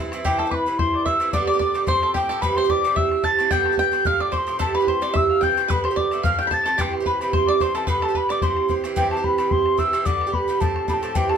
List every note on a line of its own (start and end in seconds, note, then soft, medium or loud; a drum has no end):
0.00 0.12 G2 medium
0.00 0.12 E3 medium
0.00 0.13 C4 medium
0.00 0.13 E4 medium
0.04 bodhran soft
0.12 0.23 G2 medium
0.12 0.24 E3 medium
0.12 0.24 C4 medium
0.12 0.25 E4 medium
0.12 bodhran medium
0.24 0.46 G2 medium
0.24 0.46 E3 medium
0.24 0.46 C4 medium
0.24 0.44 E4 medium
0.24 0.53 G4 medium
0.24 0.39 G4 medium
0.24 0.40 G5 medium
0.24 bodhran medium
0.39 0.51 A4 medium
0.39 0.52 A5 medium
0.39 bodhran medium
0.45 0.66 E3 soft
0.45 0.66 C4 soft
0.45 0.67 E4 soft
0.51 0.77 B4 medium
0.51 0.66 B4 medium
0.51 0.80 B5 medium
0.51 0.56 D6 medium
0.51 bodhran medium
0.66 1.05 G2 medium
0.66 1.06 E3 soft
0.66 1.06 C4 medium
0.66 1.07 E4 medium
0.66 0.73 B4 medium
0.78 1.05 C5 medium
0.78 0.94 C5 medium
0.78 1.07 C6 medium
0.78 bodhran medium
0.94 1.07 D5 medium
0.94 bodhran soft
1.06 1.19 G2 medium
1.06 1.20 E3 medium
1.06 1.20 C4 medium
1.06 1.21 E4 medium
1.06 1.31 E5 medium
1.06 1.32 E5 medium
1.06 1.32 E6 medium
1.06 bodhran medium
1.20 1.32 G2 medium
1.20 1.33 E3 medium
1.20 1.33 C4 medium
1.20 1.34 E4 medium
1.20 bodhran medium
1.33 1.54 G2 medium
1.33 1.54 D3 medium
1.33 1.53 B3 medium
1.33 1.52 G4 medium
1.33 1.46 D5 medium
1.33 1.47 D5 medium
1.33 1.47 D6 medium
1.33 bodhran medium
1.47 1.58 D5 medium
1.47 1.60 D5 medium
1.47 1.60 D6 medium
1.47 bodhran medium
1.53 1.74 D3 soft
1.53 1.74 B3 soft
1.53 1.75 G4 medium
1.59 1.85 D5 medium
1.59 1.81 D5 medium
1.59 1.86 D6 medium
1.59 bodhran medium
1.74 1.86 G2 medium
1.74 1.87 D3 medium
1.74 1.87 B3 medium
1.74 1.87 G4 medium
1.74 bodhran medium
1.83 1.88 D5 soft
1.87 2.14 A2 medium
1.87 2.14 F3 medium
1.87 2.15 C4 medium
1.87 2.16 G4 medium
1.87 2.02 C5 medium
1.87 2.14 C5 medium
1.87 2.13 C6 loud
1.87 bodhran medium
2.02 2.15 A4 medium
2.02 bodhran soft
2.14 2.29 A2 medium
2.14 2.29 F3 medium
2.14 2.30 C4 medium
2.14 2.28 G4 medium
2.14 2.43 G4 medium
2.14 2.31 G4 medium
2.14 2.43 G5 medium
2.14 bodhran medium
2.29 2.42 A2 medium
2.29 2.43 F3 medium
2.29 2.43 C4 medium
2.29 2.43 G4 medium
2.29 2.42 A4 medium
2.29 bodhran medium
2.41 2.64 G2 medium
2.41 2.64 E3 medium
2.41 2.64 C4 medium
2.41 2.63 G4 medium
2.41 2.57 B4 medium
2.41 2.56 B4 medium
2.41 2.58 B5 loud
2.41 bodhran medium
2.56 2.69 C5 medium
2.56 2.72 C6 medium
2.56 bodhran medium
2.64 2.84 E3 soft
2.64 2.85 C4 medium
2.64 2.85 G4 medium
2.69 2.95 D5 medium
2.69 2.98 D5 medium
2.69 2.98 D6 loud
2.69 bodhran medium
2.84 3.22 G2 medium
2.84 3.23 E3 medium
2.84 3.23 C4 medium
2.84 3.25 G4 medium
2.84 bodhran medium
2.96 3.25 E5 medium
2.96 3.23 E5 medium
2.96 3.26 E6 loud
2.96 bodhran medium
3.12 bodhran soft
3.23 3.38 G2 medium
3.23 3.38 E3 medium
3.23 3.39 C4 medium
3.23 3.40 G4 medium
3.23 3.49 A5 medium
3.23 3.50 A5 medium
3.23 3.53 A6 loud
3.23 bodhran medium
3.39 3.50 G2 medium
3.39 3.52 E3 medium
3.39 3.52 C4 medium
3.39 3.52 G4 medium
3.39 bodhran medium
3.51 3.72 G2 medium
3.51 3.73 D3 medium
3.51 3.72 B3 medium
3.51 3.71 G4 medium
3.51 3.76 G5 loud
3.51 3.67 G5 medium
3.51 3.78 G6 loud
3.51 bodhran medium
3.66 3.79 A5 medium
3.66 bodhran medium
3.72 3.92 D3 soft
3.72 3.92 B3 soft
3.72 3.93 G4 soft
3.78 4.07 G5 medium
3.78 4.06 G5 medium
3.78 4.08 G6 medium
3.78 bodhran medium
3.92 4.04 G2 medium
3.92 4.05 D3 medium
3.92 4.05 B3 medium
3.92 4.05 G4 medium
3.92 bodhran medium
4.05 4.31 A2 medium
4.05 4.31 F3 medium
4.05 4.32 C4 medium
4.05 4.33 G4 medium
4.05 4.21 F5 medium
4.05 4.22 F5 medium
4.05 4.23 F6 loud
4.05 bodhran medium
4.20 4.33 D5 medium
4.20 4.32 D5 medium
4.20 4.33 D6 medium
4.20 bodhran soft
4.32 4.46 A2 soft
4.32 4.46 F3 medium
4.32 4.47 C4 medium
4.32 4.48 G4 medium
4.32 4.58 C5 medium
4.32 4.61 C5 medium
4.32 4.39 D6 medium
4.32 bodhran medium
4.38 4.60 C6 medium
4.47 4.59 A2 medium
4.47 4.59 F3 medium
4.47 4.58 C4 medium
4.47 4.59 G4 medium
4.47 bodhran medium
4.59 4.81 G2 medium
4.59 4.81 E3 medium
4.59 4.80 C4 medium
4.59 4.79 G4 medium
4.59 4.74 A4 medium
4.59 4.76 A4 medium
4.59 4.76 A5 medium
4.59 bodhran medium
4.75 4.87 B4 medium
4.75 4.88 B4 medium
4.75 4.89 B5 medium
4.75 bodhran medium
4.80 5.01 E3 soft
4.80 5.02 C4 soft
4.80 5.02 G4 soft
4.87 5.02 C5 medium
4.87 5.16 C5 medium
4.87 5.18 C6 medium
4.87 bodhran medium
5.02 5.41 G2 medium
5.02 5.41 E3 medium
5.02 5.42 C4 medium
5.02 5.43 G4 medium
5.02 5.14 D5 medium
5.02 bodhran medium
5.14 5.40 E5 medium
5.14 5.22 E5 medium
5.14 5.45 E6 medium
5.14 bodhran medium
5.30 5.43 F5 medium
5.30 bodhran soft
5.41 5.56 G2 soft
5.41 5.56 E3 medium
5.41 5.57 C4 medium
5.41 5.58 G4 medium
5.41 5.67 G5 medium
5.41 5.71 G5 medium
5.41 5.72 G6 medium
5.41 bodhran medium
5.57 5.68 G2 medium
5.57 5.70 E3 medium
5.57 5.70 C4 medium
5.57 5.70 G4 medium
5.57 bodhran medium
5.68 5.91 G2 medium
5.68 5.91 D3 medium
5.68 5.90 B3 medium
5.68 5.90 G4 medium
5.68 5.83 B4 medium
5.68 5.87 B5 medium
5.68 bodhran medium
5.84 5.97 C5 medium
5.84 5.98 C5 medium
5.84 5.99 C6 medium
5.84 bodhran medium
5.91 6.12 D3 soft
5.91 6.12 B3 soft
5.91 6.12 G4 medium
5.96 6.25 D5 medium
5.96 6.13 D5 medium
5.96 6.24 D6 medium
5.96 bodhran medium
6.11 6.24 G2 medium
6.11 6.24 D3 medium
6.11 6.25 B3 medium
6.11 6.25 G4 medium
6.11 6.25 E5 medium
6.11 bodhran medium
6.23 6.49 A2 medium
6.23 6.50 F3 medium
6.23 6.51 C4 medium
6.23 6.52 G4 medium
6.23 6.37 F5 medium
6.23 6.50 F5 medium
6.23 6.39 F6 loud
6.23 bodhran medium
6.39 6.47 G5 medium
6.39 6.55 G6 medium
6.39 bodhran medium
6.47 6.64 A2 medium
6.47 6.65 A5 medium
6.47 6.51 B5 medium
6.47 bodhran medium
6.51 6.66 F3 medium
6.51 6.66 C4 medium
6.51 6.67 G4 medium
6.51 6.80 A5 medium
6.51 6.83 A6 medium
6.66 6.78 A2 medium
6.66 6.78 F3 medium
6.66 6.78 C4 medium
6.66 6.79 G4 medium
6.66 6.79 A4 medium
6.66 bodhran medium
6.78 7.00 G2 medium
6.78 7.00 E3 medium
6.78 7.00 C4 loud
6.78 6.92 G4 medium
6.78 6.99 G4 medium
6.78 6.95 G5 medium
6.78 bodhran medium
6.93 bodhran medium
7.00 7.21 E3 soft
7.00 7.21 C4 soft
7.00 7.21 G4 medium
7.06 7.31 B4 medium
7.06 7.19 B4 medium
7.06 7.20 B5 medium
7.06 bodhran medium
7.20 7.59 G2 medium
7.20 7.60 E3 medium
7.20 7.61 C4 medium
7.20 7.62 G4 medium
7.20 7.32 B4 medium
7.20 7.33 B5 medium
7.20 bodhran soft
7.33 7.48 C5 medium
7.33 7.51 C6 medium
7.33 bodhran medium
7.47 7.60 D5 medium
7.47 7.64 D6 medium
7.47 bodhran soft
7.60 7.74 G2 medium
7.60 7.74 E3 soft
7.60 7.75 C4 medium
7.60 7.75 G4 medium
7.60 7.75 C5 medium
7.60 7.74 C5 medium
7.60 7.79 C6 medium
7.60 bodhran medium
7.75 7.87 G2 medium
7.75 7.88 E3 medium
7.75 7.88 C4 medium
7.75 7.88 G4 medium
7.75 7.87 A4 medium
7.75 7.85 A4 medium
7.75 7.89 A5 medium
7.75 bodhran medium
7.85 8.09 G2 medium
7.85 8.09 D3 medium
7.85 8.09 B3 medium
7.85 8.01 B4 medium
7.85 8.02 B4 medium
7.85 7.88 C5 medium
7.85 bodhran medium
7.90 8.07 G4 medium
7.90 8.07 B5 medium
8.02 8.14 A4 medium
8.02 8.15 A4 medium
8.02 8.19 A5 medium
8.02 bodhran medium
8.08 8.29 D3 soft
8.08 8.30 B3 soft
8.08 8.30 G4 soft
8.15 8.29 B4 medium
8.15 8.30 B4 medium
8.15 8.33 B5 medium
8.15 bodhran medium
8.29 8.41 G2 medium
8.29 8.43 D3 medium
8.29 8.43 B3 medium
8.29 8.42 G4 medium
8.29 8.42 D5 medium
8.29 8.43 D5 medium
8.29 8.45 D6 medium
8.29 bodhran medium
8.42 8.67 G2 medium
8.42 8.68 E3 medium
8.42 8.69 C4 medium
8.42 8.70 G4 medium
8.42 8.81 C5 medium
8.42 8.82 C5 medium
8.42 8.73 C6 medium
8.42 bodhran medium
8.57 bodhran medium
8.68 8.83 G2 soft
8.68 8.83 E3 soft
8.68 8.84 C4 medium
8.68 8.84 G4 medium
8.68 bodhran medium
8.84 8.95 G2 medium
8.84 8.95 E3 medium
8.84 8.96 C4 medium
8.84 8.96 G4 medium
8.84 bodhran medium
8.96 9.17 G2 medium
8.96 9.17 E3 medium
8.96 9.17 C4 medium
8.96 9.16 G4 medium
8.96 9.23 G4 medium
8.96 9.10 G5 medium
8.96 bodhran medium
9.11 9.26 A5 medium
9.11 bodhran medium
9.17 9.38 E3 soft
9.17 9.38 C4 soft
9.17 9.38 G4 medium
9.24 9.36 B4 medium
9.24 9.54 B5 medium
9.24 bodhran medium
9.38 9.76 G2 medium
9.38 9.77 E3 medium
9.38 9.78 C4 medium
9.38 9.79 G4 medium
9.38 9.50 B4 medium
9.38 bodhran medium
9.50 9.76 C5 medium
9.50 9.80 C6 medium
9.50 bodhran medium
9.66 bodhran medium
9.78 9.92 G2 medium
9.78 9.93 E3 medium
9.78 9.93 C4 medium
9.78 9.93 G4 medium
9.78 10.04 E5 medium
9.78 10.07 E6 medium
9.78 bodhran medium
9.93 10.04 G2 medium
9.93 10.06 E3 medium
9.93 10.06 C4 medium
9.93 10.06 G4 medium
9.93 bodhran medium
10.05 10.27 G2 medium
10.05 10.27 D3 medium
10.05 10.26 B3 medium
10.05 10.25 G4 medium
10.05 10.31 D5 medium
10.05 10.36 D6 medium
10.05 bodhran medium
10.21 bodhran medium
10.27 10.48 D3 soft
10.27 10.48 B3 soft
10.27 10.48 G4 medium
10.33 10.58 B4 medium
10.33 10.62 B5 medium
10.33 bodhran medium
10.48 10.60 G2 medium
10.48 10.60 D3 medium
10.48 10.61 B3 medium
10.48 10.60 G4 medium
10.60 10.87 A2 medium
10.60 10.88 F3 medium
10.60 10.88 C4 medium
10.60 10.89 G4 medium
10.60 10.86 A4 medium
10.60 10.88 A5 medium
10.60 bodhran medium
10.76 bodhran medium
10.88 11.01 A2 medium
10.88 11.02 F3 medium
10.88 11.02 C4 medium
10.88 11.03 G4 medium
10.88 11.16 A4 medium
10.88 10.95 B5 medium
10.88 bodhran medium
10.94 11.16 A5 medium
11.03 11.15 A2 medium
11.03 11.15 F3 medium
11.03 11.15 C4 medium
11.03 11.15 G4 medium
11.03 bodhran medium
11.15 11.36 G2 medium
11.15 11.36 E3 medium
11.15 11.35 C4 medium
11.15 11.34 G4 loud
11.15 11.31 G4 medium
11.15 11.31 G5 loud
11.15 bodhran medium
11.29 11.37 A4 medium
11.29 11.37 A5 medium
11.29 bodhran medium